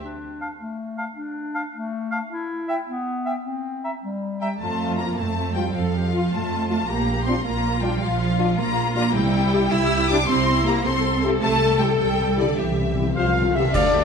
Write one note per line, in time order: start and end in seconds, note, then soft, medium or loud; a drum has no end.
0.02 0.50 D4 soft
0.41 0.48 F5 soft
0.41 0.50 A5 soft
0.59 1.07 A3 soft
0.98 1.04 F5 soft
0.98 1.07 A5 soft
1.16 1.64 D4 soft
1.54 1.62 F5 soft
1.54 1.63 A5 soft
1.73 2.21 A3 soft
2.11 2.18 F5 soft
2.11 2.21 A5 soft
2.30 2.78 E4 medium
2.68 2.75 E5 soft
2.68 2.78 G5 soft
2.87 3.35 B3 medium
3.26 3.33 E5 soft
3.26 3.35 G5 soft
3.45 3.93 C4 soft
3.84 3.91 E5 soft
3.84 3.93 A#5 soft
4.04 4.52 G3 soft
4.41 4.60 G3 soft
4.41 4.48 E5 soft
4.41 4.59 G5 soft
4.41 4.50 G5 soft
4.41 4.50 A#5 soft
4.60 5.11 F2 medium
4.60 4.98 A3 medium
4.60 5.14 F4 medium
4.60 4.98 A5 medium
4.97 5.18 A#3 medium
4.97 5.05 F4 soft
4.97 5.17 A#5 medium
5.17 5.68 F2 soft
5.17 5.56 A3 medium
5.17 5.75 C4 medium
5.17 5.55 A5 medium
5.17 5.56 A5 medium
5.56 5.75 G3 medium
5.56 5.63 F4 medium
5.56 5.74 G5 medium
5.56 5.75 G5 medium
5.75 6.25 F2 medium
5.75 6.32 F3 medium
5.75 5.93 A4 medium
5.75 6.32 F5 medium
5.75 6.31 F5 medium
5.94 6.13 G4 medium
6.13 6.87 F4 medium
6.13 6.20 F4 medium
6.32 6.82 F2 medium
6.32 6.69 A3 medium
6.32 6.68 A5 medium
6.32 6.69 A5 medium
6.69 6.89 A3 medium
6.69 6.76 F4 medium
6.69 6.88 A5 medium
6.69 6.89 A5 medium
6.88 7.39 A#1 medium
6.88 7.26 A#3 medium
6.88 7.46 G4 medium
6.88 7.26 A#5 medium
7.25 7.34 C4 medium
7.25 7.34 D4 medium
7.25 7.33 F4 medium
7.25 7.45 C6 medium
7.45 7.95 A#1 medium
7.45 7.83 A#3 medium
7.45 9.12 F4 medium
7.45 7.82 A#5 medium
7.45 7.83 A#5 medium
7.82 8.02 G3 medium
7.82 7.89 D4 medium
7.82 7.90 F4 medium
7.82 8.02 G5 medium
8.02 8.52 A#1 medium
8.02 8.59 F3 medium
8.02 8.58 F5 medium
8.02 8.59 F5 medium
8.39 8.46 D4 medium
8.39 8.46 F4 medium
8.59 9.09 A#1 medium
8.59 8.96 A#3 medium
8.59 8.94 A#5 medium
8.59 8.96 A#5 medium
8.95 9.15 A#3 medium
8.95 9.02 D4 medium
8.95 9.03 F4 medium
8.95 9.15 A#5 medium
8.95 9.16 A#5 medium
9.15 9.66 C2 medium
9.15 9.68 C3 medium
9.15 9.72 G3 loud
9.15 9.72 E4 medium
9.15 9.71 G5 medium
9.53 9.61 E4 medium
9.53 9.60 G4 medium
9.72 10.23 C2 medium
9.72 10.10 E4 loud
9.72 10.28 G4 medium
9.72 10.10 E6 medium
9.72 10.11 E6 medium
10.09 10.18 D4 loud
10.09 10.16 E4 medium
10.09 10.16 G4 medium
10.09 10.28 D6 medium
10.09 10.29 D6 loud
10.29 10.79 C2 medium
10.29 10.66 C4 loud
10.29 10.85 E4 medium
10.29 10.67 C6 medium
10.29 10.66 C6 medium
10.65 10.85 A#3 medium
10.65 10.72 E4 medium
10.65 10.73 G4 medium
10.65 10.85 A#5 medium
10.65 10.86 A#5 medium
10.85 11.36 C2 medium
10.85 11.24 C4 medium
10.85 12.55 A4 loud
10.85 11.24 C6 medium
10.85 11.23 C6 medium
11.24 11.31 E4 medium
11.24 11.31 G4 medium
11.42 11.93 C2 medium
11.42 11.48 C3 soft
11.42 11.78 A3 loud
11.42 11.78 A5 medium
11.42 11.79 A5 loud
11.49 11.56 C3 soft
11.57 11.64 C3 soft
11.65 11.71 C3 soft
11.72 11.79 C3 soft
11.80 11.87 C3 soft
11.80 11.99 G3 medium
11.80 11.87 E4 medium
11.80 11.87 G4 medium
11.80 11.99 G5 medium
11.80 11.98 G5 medium
11.88 11.93 C3 soft
11.94 12.01 C3 soft
11.99 12.51 C2 medium
11.99 12.09 C3 soft
11.99 12.38 G3 medium
11.99 12.38 G5 medium
12.11 12.17 C3 soft
12.18 12.25 C3 soft
12.26 12.32 C3 soft
12.33 12.39 C3 soft
12.38 12.47 C3 soft
12.38 12.58 D3 medium
12.38 12.45 E4 medium
12.38 12.45 G4 medium
12.38 12.58 D5 medium
12.38 12.59 D5 medium
12.56 13.10 C2 medium
12.56 12.63 C3 medium
12.56 13.17 E3 medium
12.56 13.13 G4 medium
12.56 13.16 E5 medium
12.64 12.71 C3 soft
12.72 12.78 C3 medium
12.79 12.86 C3 medium
12.87 12.93 C3 medium
12.94 13.00 C3 medium
12.98 13.09 C3 medium
12.98 13.05 E4 medium
12.98 13.04 G4 medium
13.10 13.16 C3 medium
13.16 13.68 C2 medium
13.16 13.24 C3 medium
13.16 13.53 F3 medium
13.16 13.53 F4 medium
13.16 13.34 C5 medium
13.16 13.52 F5 medium
13.16 13.53 F5 medium
13.16 13.57 F5 medium
13.25 13.32 C3 medium
13.33 13.40 C3 medium
13.33 13.55 A#4 medium
13.41 13.48 C3 medium
13.49 13.56 C3 medium
13.55 13.63 C3 medium
13.55 13.75 E3 medium
13.55 13.63 E4 medium
13.55 13.62 G4 soft
13.55 13.73 A4 soft
13.55 13.76 E5 medium
13.55 13.75 E5 medium
13.55 13.74 E5 medium
13.55 13.75 E5 medium
13.64 13.71 C3 medium
13.73 13.83 D2 medium
13.73 14.04 D3 medium
13.73 14.04 D4 medium
13.73 13.92 A4 medium
13.73 14.04 D5 medium
13.73 13.92 F5 medium
13.73 concert bass drum medium
13.73 crash medium
13.93 14.01 D2 medium
13.93 14.02 D2 medium
13.93 14.01 G4 medium
13.93 14.01 E5 medium